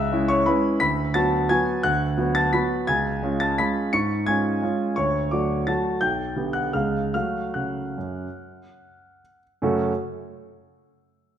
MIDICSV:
0, 0, Header, 1, 2, 480
1, 0, Start_track
1, 0, Key_signature, 3, "minor"
1, 0, Tempo, 347423
1, 1107, Time_signature, 3, 2, 24, 8
1, 8790, Tempo, 393959
1, 10230, Tempo, 414365
1, 12630, Tempo, 382653
1, 14843, End_track
2, 0, Start_track
2, 0, Title_t, "Grand piano"
2, 0, Program_c, 0, 0
2, 0, Control_c, 0, 64, 127
2, 0, Note_on_c, 0, 37, 69
2, 0, Note_on_c, 0, 76, 71
2, 0, Note_on_c, 0, 88, 90
2, 140, Note_off_c, 0, 37, 0
2, 166, Note_on_c, 0, 56, 49
2, 179, Note_on_c, 0, 61, 50
2, 180, Note_on_c, 0, 64, 53
2, 348, Note_off_c, 0, 76, 0
2, 389, Note_off_c, 0, 88, 0
2, 393, Note_on_c, 0, 85, 85
2, 412, Note_on_c, 0, 73, 67
2, 592, Note_off_c, 0, 56, 0
2, 599, Note_off_c, 0, 61, 0
2, 600, Note_off_c, 0, 64, 0
2, 626, Note_off_c, 0, 73, 0
2, 633, Note_off_c, 0, 85, 0
2, 637, Note_on_c, 0, 83, 81
2, 648, Note_on_c, 0, 56, 45
2, 649, Control_c, 0, 64, 0
2, 649, Note_on_c, 0, 71, 61
2, 654, Note_on_c, 0, 61, 47
2, 659, Note_on_c, 0, 64, 50
2, 1069, Note_off_c, 0, 56, 0
2, 1072, Note_off_c, 0, 61, 0
2, 1075, Note_off_c, 0, 64, 0
2, 1083, Note_off_c, 0, 71, 0
2, 1099, Note_off_c, 0, 83, 0
2, 1105, Note_on_c, 0, 95, 90
2, 1113, Note_on_c, 0, 38, 65
2, 1120, Note_on_c, 0, 83, 72
2, 1392, Control_c, 0, 64, 127
2, 1553, Note_off_c, 0, 83, 0
2, 1569, Note_off_c, 0, 38, 0
2, 1577, Note_on_c, 0, 93, 89
2, 1579, Note_off_c, 0, 95, 0
2, 1589, Note_on_c, 0, 54, 51
2, 1594, Note_on_c, 0, 59, 47
2, 1595, Note_on_c, 0, 81, 68
2, 1598, Note_on_c, 0, 66, 53
2, 2018, Note_off_c, 0, 54, 0
2, 2021, Note_off_c, 0, 59, 0
2, 2023, Note_off_c, 0, 66, 0
2, 2035, Note_off_c, 0, 81, 0
2, 2060, Note_off_c, 0, 93, 0
2, 2064, Note_on_c, 0, 92, 84
2, 2076, Note_on_c, 0, 54, 47
2, 2079, Control_c, 0, 64, 0
2, 2084, Note_on_c, 0, 59, 50
2, 2084, Note_on_c, 0, 80, 67
2, 2087, Note_on_c, 0, 66, 53
2, 2495, Note_off_c, 0, 54, 0
2, 2499, Note_off_c, 0, 59, 0
2, 2501, Note_off_c, 0, 66, 0
2, 2513, Note_off_c, 0, 80, 0
2, 2534, Note_on_c, 0, 90, 91
2, 2535, Note_off_c, 0, 92, 0
2, 2542, Note_on_c, 0, 38, 64
2, 2544, Note_on_c, 0, 78, 66
2, 2796, Control_c, 0, 64, 127
2, 2989, Note_off_c, 0, 38, 0
2, 3007, Note_on_c, 0, 54, 44
2, 3009, Note_on_c, 0, 59, 48
2, 3018, Note_on_c, 0, 66, 51
2, 3201, Note_off_c, 0, 78, 0
2, 3244, Note_on_c, 0, 93, 85
2, 3246, Note_off_c, 0, 90, 0
2, 3257, Note_on_c, 0, 81, 66
2, 3450, Note_off_c, 0, 54, 0
2, 3452, Note_off_c, 0, 59, 0
2, 3456, Note_off_c, 0, 66, 0
2, 3484, Note_off_c, 0, 81, 0
2, 3491, Note_on_c, 0, 95, 72
2, 3494, Note_off_c, 0, 93, 0
2, 3503, Note_on_c, 0, 54, 45
2, 3507, Note_on_c, 0, 59, 48
2, 3508, Control_c, 0, 64, 0
2, 3508, Note_on_c, 0, 83, 55
2, 3517, Note_on_c, 0, 66, 48
2, 3935, Note_off_c, 0, 54, 0
2, 3937, Note_off_c, 0, 59, 0
2, 3942, Note_off_c, 0, 66, 0
2, 3951, Note_off_c, 0, 83, 0
2, 3971, Note_on_c, 0, 92, 87
2, 3976, Note_off_c, 0, 95, 0
2, 3986, Note_on_c, 0, 37, 62
2, 3992, Note_on_c, 0, 80, 62
2, 4190, Control_c, 0, 64, 127
2, 4442, Note_off_c, 0, 37, 0
2, 4461, Note_on_c, 0, 56, 44
2, 4471, Note_on_c, 0, 61, 47
2, 4475, Note_on_c, 0, 65, 47
2, 4657, Note_off_c, 0, 80, 0
2, 4697, Note_off_c, 0, 92, 0
2, 4698, Note_on_c, 0, 93, 83
2, 4713, Note_on_c, 0, 81, 63
2, 4908, Note_off_c, 0, 56, 0
2, 4913, Note_off_c, 0, 61, 0
2, 4915, Note_off_c, 0, 65, 0
2, 4941, Note_off_c, 0, 81, 0
2, 4951, Note_off_c, 0, 93, 0
2, 4951, Note_on_c, 0, 95, 79
2, 4965, Note_on_c, 0, 56, 42
2, 4967, Note_on_c, 0, 83, 62
2, 4968, Note_on_c, 0, 61, 43
2, 4971, Control_c, 0, 64, 0
2, 4977, Note_on_c, 0, 65, 46
2, 5390, Note_off_c, 0, 56, 0
2, 5392, Note_off_c, 0, 61, 0
2, 5397, Note_off_c, 0, 65, 0
2, 5405, Note_off_c, 0, 83, 0
2, 5427, Note_on_c, 0, 97, 84
2, 5431, Note_off_c, 0, 95, 0
2, 5435, Note_on_c, 0, 44, 52
2, 5442, Note_on_c, 0, 85, 61
2, 5656, Control_c, 0, 64, 127
2, 5873, Note_off_c, 0, 85, 0
2, 5887, Note_off_c, 0, 44, 0
2, 5892, Note_on_c, 0, 92, 79
2, 5898, Note_off_c, 0, 97, 0
2, 5910, Note_on_c, 0, 56, 42
2, 5914, Note_on_c, 0, 61, 41
2, 5914, Note_on_c, 0, 65, 45
2, 5914, Note_on_c, 0, 80, 58
2, 6346, Note_off_c, 0, 56, 0
2, 6348, Note_off_c, 0, 61, 0
2, 6348, Note_off_c, 0, 65, 0
2, 6389, Note_on_c, 0, 56, 39
2, 6400, Control_c, 0, 64, 0
2, 6401, Note_on_c, 0, 61, 42
2, 6402, Note_on_c, 0, 65, 46
2, 6822, Note_off_c, 0, 56, 0
2, 6822, Note_off_c, 0, 80, 0
2, 6829, Note_off_c, 0, 61, 0
2, 6829, Note_off_c, 0, 65, 0
2, 6853, Note_on_c, 0, 85, 75
2, 6867, Note_off_c, 0, 92, 0
2, 6868, Note_on_c, 0, 38, 54
2, 6869, Note_on_c, 0, 73, 60
2, 7113, Control_c, 0, 64, 127
2, 7313, Note_off_c, 0, 73, 0
2, 7332, Note_off_c, 0, 38, 0
2, 7339, Note_off_c, 0, 85, 0
2, 7340, Note_on_c, 0, 86, 54
2, 7350, Note_on_c, 0, 54, 36
2, 7352, Note_on_c, 0, 74, 43
2, 7357, Note_on_c, 0, 57, 39
2, 7364, Note_on_c, 0, 66, 42
2, 7795, Note_off_c, 0, 54, 0
2, 7799, Note_off_c, 0, 57, 0
2, 7803, Note_off_c, 0, 66, 0
2, 7811, Note_off_c, 0, 74, 0
2, 7832, Note_on_c, 0, 93, 65
2, 7839, Note_off_c, 0, 86, 0
2, 7844, Note_on_c, 0, 54, 36
2, 7844, Note_on_c, 0, 57, 38
2, 7849, Note_on_c, 0, 81, 50
2, 7851, Note_on_c, 0, 66, 38
2, 7864, Control_c, 0, 64, 0
2, 8272, Note_off_c, 0, 54, 0
2, 8272, Note_off_c, 0, 57, 0
2, 8276, Note_off_c, 0, 66, 0
2, 8289, Note_off_c, 0, 81, 0
2, 8300, Note_on_c, 0, 91, 64
2, 8309, Note_on_c, 0, 35, 47
2, 8311, Note_on_c, 0, 79, 51
2, 8313, Note_off_c, 0, 93, 0
2, 8548, Control_c, 0, 64, 127
2, 8769, Note_off_c, 0, 35, 0
2, 8788, Note_on_c, 0, 50, 34
2, 8791, Note_on_c, 0, 59, 36
2, 8794, Note_on_c, 0, 67, 37
2, 8964, Note_off_c, 0, 79, 0
2, 8998, Note_on_c, 0, 90, 62
2, 9004, Note_off_c, 0, 91, 0
2, 9011, Note_on_c, 0, 78, 46
2, 9203, Note_off_c, 0, 50, 0
2, 9205, Note_off_c, 0, 59, 0
2, 9206, Note_off_c, 0, 67, 0
2, 9231, Note_off_c, 0, 78, 0
2, 9242, Note_off_c, 0, 90, 0
2, 9242, Note_on_c, 0, 89, 55
2, 9245, Note_on_c, 0, 37, 43
2, 9245, Note_on_c, 0, 49, 32
2, 9252, Note_on_c, 0, 77, 46
2, 9255, Note_on_c, 0, 56, 29
2, 9260, Note_on_c, 0, 68, 31
2, 9264, Control_c, 0, 64, 0
2, 9491, Control_c, 0, 64, 127
2, 9690, Note_off_c, 0, 49, 0
2, 9695, Note_off_c, 0, 56, 0
2, 9698, Note_off_c, 0, 68, 0
2, 9708, Note_off_c, 0, 77, 0
2, 9720, Note_off_c, 0, 89, 0
2, 9724, Note_off_c, 0, 37, 0
2, 9739, Note_on_c, 0, 89, 62
2, 9744, Note_on_c, 0, 57, 31
2, 9745, Note_on_c, 0, 66, 31
2, 9748, Note_on_c, 0, 54, 37
2, 9748, Note_on_c, 0, 77, 47
2, 9761, Control_c, 0, 64, 0
2, 9988, Control_c, 0, 64, 127
2, 10087, Note_off_c, 0, 54, 0
2, 10133, Note_off_c, 0, 57, 0
2, 10133, Note_off_c, 0, 66, 0
2, 10198, Note_off_c, 0, 77, 0
2, 10225, Note_on_c, 0, 90, 45
2, 10227, Note_off_c, 0, 89, 0
2, 10239, Note_on_c, 0, 49, 40
2, 10240, Note_on_c, 0, 78, 34
2, 10571, Note_off_c, 0, 49, 0
2, 10723, Control_c, 0, 64, 0
2, 10730, Note_on_c, 0, 42, 37
2, 11062, Note_off_c, 0, 42, 0
2, 11463, Control_c, 0, 64, 127
2, 12159, Control_c, 0, 64, 0
2, 12352, Note_off_c, 0, 78, 0
2, 12390, Note_off_c, 0, 90, 0
2, 12634, Note_on_c, 0, 42, 65
2, 12636, Note_on_c, 0, 57, 57
2, 12639, Note_on_c, 0, 49, 53
2, 12648, Note_on_c, 0, 61, 56
2, 12648, Note_on_c, 0, 66, 55
2, 12648, Note_on_c, 0, 69, 54
2, 12801, Control_c, 0, 64, 127
2, 12903, Note_off_c, 0, 42, 0
2, 12904, Note_off_c, 0, 57, 0
2, 12905, Note_off_c, 0, 49, 0
2, 12910, Note_off_c, 0, 66, 0
2, 12910, Note_off_c, 0, 69, 0
2, 12911, Note_off_c, 0, 61, 0
2, 12997, Control_c, 0, 64, 0
2, 14843, End_track
0, 0, End_of_file